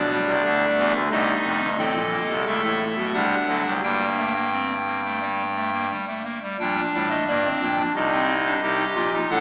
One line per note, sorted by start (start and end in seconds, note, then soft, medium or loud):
0.00 0.15 B1 medium
0.00 0.15 B2 medium
0.00 0.92 D4 medium
0.00 0.92 D5 medium
0.11 0.32 G3 medium
0.27 0.42 C2 medium
0.27 0.41 C3 medium
0.44 0.65 D2 medium
0.44 0.65 D3 medium
0.44 1.02 A3 medium
0.78 0.92 E2 medium
0.78 0.92 E3 medium
0.94 1.09 D2 medium
0.94 1.09 D3 medium
1.11 1.32 C2 medium
1.11 1.32 C3 medium
1.11 1.69 A3 medium
1.11 1.69 D#4 medium
1.11 2.27 D#5 medium
1.45 1.59 F1 medium
1.45 1.59 F2 medium
1.62 1.76 G1 medium
1.62 1.76 G2 medium
1.78 1.93 A1 medium
1.78 1.93 A2 medium
1.78 2.00 C4 medium
1.78 2.95 A4 medium
1.95 2.16 A#1 medium
1.95 2.16 A#2 medium
2.13 2.33 A#3 medium
2.30 2.44 C2 medium
2.30 2.44 C3 medium
2.46 2.61 C#2 medium
2.46 2.61 C#3 medium
2.46 3.05 A3 medium
2.46 3.05 E5 medium
2.64 2.85 A1 medium
2.64 2.85 A2 medium
2.97 3.12 B1 medium
2.97 3.12 B2 medium
3.13 3.35 C2 medium
3.13 3.35 C3 medium
3.13 3.35 G3 medium
3.13 3.73 D4 medium
3.13 3.73 F#5 medium
3.48 3.63 D2 medium
3.48 3.63 D3 medium
3.48 3.69 F#3 medium
3.66 3.81 C2 medium
3.66 3.80 C3 medium
3.83 5.91 G1 medium
3.83 5.91 G2 medium
3.83 4.05 G3 medium
3.83 4.33 A#3 medium
3.83 5.91 G5 medium
4.18 4.33 A3 medium
4.35 4.50 A#3 medium
4.52 4.73 C4 medium
4.87 5.01 A#3 soft
5.05 5.19 A3 medium
5.21 5.42 G3 medium
5.56 5.70 A3 medium
5.73 5.87 A#3 medium
5.90 6.05 G3 medium
6.08 6.22 A3 soft
6.24 6.39 A#3 medium
6.43 6.57 G3 medium
6.60 6.81 A#1 medium
6.60 6.81 A#2 medium
6.60 6.80 G3 medium
6.60 7.76 D4 medium
6.60 6.81 G5 medium
6.94 7.15 A1 medium
6.94 7.15 A2 medium
6.94 7.08 G3 medium
6.94 7.08 F5 medium
7.10 7.24 A3 medium
7.10 7.24 D#5 medium
7.28 7.48 G1 medium
7.28 7.48 G2 medium
7.28 7.42 A#3 medium
7.28 7.48 D5 medium
7.45 7.65 C4 medium
7.61 7.82 A#1 medium
7.61 7.82 A#2 medium
7.61 7.82 G5 medium
7.78 7.92 D4 medium
7.95 8.54 C2 medium
7.95 8.54 C3 medium
7.95 8.54 D#4 medium
7.95 9.12 D#5 medium
8.13 8.33 C4 medium
8.46 8.60 D4 medium
8.63 8.84 C2 medium
8.63 8.84 C3 medium
8.63 8.84 D#4 medium
8.63 9.21 G4 medium
8.96 9.17 A#1 medium
8.96 9.17 A#2 medium
8.96 9.11 F4 medium
9.13 9.28 D#4 medium
9.30 9.40 A1 medium
9.30 9.40 A2 medium
9.30 9.40 D4 loud
9.30 9.40 A4 medium
9.30 9.40 F#5 medium